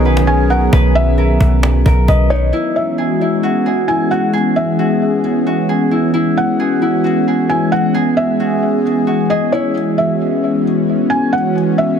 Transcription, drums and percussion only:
0.05 cajon slap
0.17 cajon slap
0.28 cajon slap
0.73 cajon bass
1.18 cajon slap
1.41 cajon bass
1.63 cajon slap
1.86 cajon bass
2.08 cajon bass

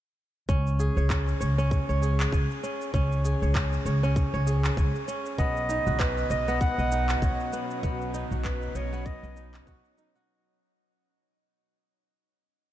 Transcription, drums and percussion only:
0.49 kick, shaker
0.67 shaker
0.80 shaker
0.97 shaker
1.10 kick, clap, shaker
1.28 shaker
1.41 shaker
1.59 shaker
1.71 kick, shaker
1.90 shaker
2.03 shaker
2.20 clap, shaker
2.32 kick, shaker
2.51 shaker
2.64 shaker
2.81 shaker
2.94 kick, shaker
3.12 shaker
3.25 shaker
3.42 shaker
3.55 kick, clap, shaker
3.73 shaker
3.86 shaker
4.04 shaker
4.16 kick, shaker
4.34 shaker
4.47 shaker
4.65 clap, shaker
4.77 kick, shaker
4.95 shaker
5.08 shaker
5.26 shaker
5.38 kick, shaker
5.57 shaker
5.70 shaker
5.87 shaker
6.00 kick, clap, shaker
6.18 shaker
6.30 shaker
6.48 shaker
6.61 kick, shaker
6.79 shaker
6.92 shaker
7.09 clap, shaker
7.22 kick, shaker
7.40 shaker
7.53 shaker
7.71 shaker
7.83 kick, shaker
8.01 shaker
8.14 shaker
8.32 shaker
8.45 kick, clap, shaker
8.62 shaker
8.75 shaker
8.93 shaker
9.06 kick, shaker
9.24 shaker
9.37 shaker
9.54 clap, shaker
9.67 kick, shaker
9.85 shaker
9.98 shaker
10.16 shaker

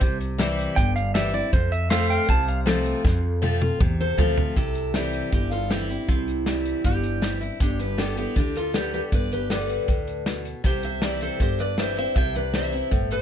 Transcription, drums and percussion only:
0.01 kick, closed hi-hat
0.21 closed hi-hat
0.39 snare, closed hi-hat
0.58 closed hi-hat
0.77 kick, closed hi-hat
0.96 closed hi-hat
1.15 snare, closed hi-hat
1.34 closed hi-hat
1.53 kick, closed hi-hat
1.72 closed hi-hat
1.91 snare, closed hi-hat
2.10 closed hi-hat
2.29 kick, closed hi-hat
2.48 closed hi-hat
2.67 snare, closed hi-hat
2.86 closed hi-hat
3.05 kick, snare
3.43 high tom
3.62 high tom
3.81 kick, mid tom
4.18 floor tom
4.38 floor tom
4.56 kick, closed hi-hat
4.75 closed hi-hat
4.94 snare, closed hi-hat
5.13 closed hi-hat
5.32 kick, closed hi-hat
5.51 closed hi-hat
5.71 snare, closed hi-hat
5.90 closed hi-hat
6.09 kick, closed hi-hat
6.28 closed hi-hat
6.46 snare, closed hi-hat
6.65 closed hi-hat
6.84 kick, closed hi-hat
7.03 closed hi-hat
7.22 snare, closed hi-hat
7.41 closed hi-hat
7.60 kick, closed hi-hat
7.79 closed hi-hat
7.98 snare, closed hi-hat
8.17 closed hi-hat
8.36 kick, closed hi-hat
8.55 closed hi-hat
8.74 snare, closed hi-hat
8.93 closed hi-hat
9.12 kick, closed hi-hat
9.32 closed hi-hat
9.50 snare, closed hi-hat
9.69 closed hi-hat
9.88 kick, closed hi-hat
10.07 closed hi-hat
10.26 snare, closed hi-hat
10.45 closed hi-hat
10.64 kick, closed hi-hat
10.83 closed hi-hat
11.02 snare, closed hi-hat
11.21 closed hi-hat
11.40 kick, closed hi-hat
11.59 closed hi-hat
11.78 snare, closed hi-hat
11.97 closed hi-hat
12.16 kick, closed hi-hat
12.35 closed hi-hat
12.54 snare, closed hi-hat
12.73 closed hi-hat
12.92 kick, closed hi-hat
13.11 closed hi-hat

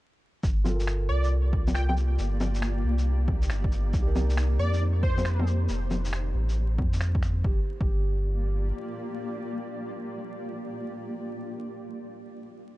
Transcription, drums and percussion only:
0.43 kick, shaker
0.65 low bongo, shaker
0.80 shaker
0.87 finger snap, shaker
1.24 shaker
1.53 kick
1.68 low bongo, shaker
1.75 finger snap, shaker
1.89 low bongo
1.97 shaker
2.19 shaker
2.41 low bongo, shaker
2.55 shaker
2.62 finger snap, shaker
2.98 shaker
3.28 kick, low bongo
3.42 shaker
3.50 finger snap, shaker
3.64 kick
3.72 shaker
3.94 kick, shaker
4.16 low bongo, shaker
4.30 shaker
4.37 finger snap, shaker
4.74 shaker
5.03 kick
5.18 low bongo, shaker
5.25 finger snap, shaker
5.39 low bongo
5.47 shaker
5.69 shaker
5.91 low bongo, shaker
6.05 shaker
6.13 finger snap, shaker
6.49 shaker
6.78 kick, low bongo
6.93 shaker
7.01 finger snap, shaker
7.15 kick
7.23 finger snap, shaker
7.44 kick
7.81 kick

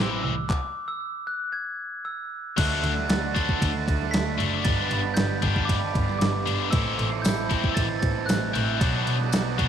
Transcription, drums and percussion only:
0.50 kick, clap
2.58 kick, crash, ride
2.84 ride
2.98 snare
3.10 snare, ride
3.36 kick, ride
3.49 kick
3.62 kick, ride
3.88 kick, ride
4.02 snare
4.14 snare, ride
4.40 ride
4.65 kick, ride
4.91 ride
5.17 snare, ride
5.42 kick, ride
5.56 kick
5.69 kick, ride
5.95 kick, ride
6.09 snare
6.21 snare, ride
6.47 ride
6.73 kick, ride
6.99 ride
7.24 snare, ride, tambourine
7.51 kick, ride
7.64 kick
7.77 kick, ride
8.03 kick, ride
8.29 snare, ride, tambourine
8.55 ride
8.81 kick, ride
9.07 ride
9.21 snare
9.32 snare, ride, tambourine
9.59 kick, ride

